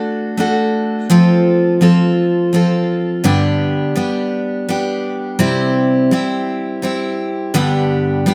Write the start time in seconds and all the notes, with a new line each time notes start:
Already playing: A3 D4 F#4 A4
0.37 A3 D4 F#4 A4
1.10 F3 C4 F4 A4
1.81 F3 C4 F4 A4
2.53 F3 C4 F4 A4
3.24 G2 D3 G3 B3 D4 G4
3.96 G3 B3 D4 G4
4.69 G3 B3 D4 G4
5.39 C3 G3 C4 E4 G4
6.11 G3 C4 E4 G4
6.82 G3 C4 E4 G4
7.54 G2 D3 G3 B3 D4 G4
8.26 G3 B3 D4 G4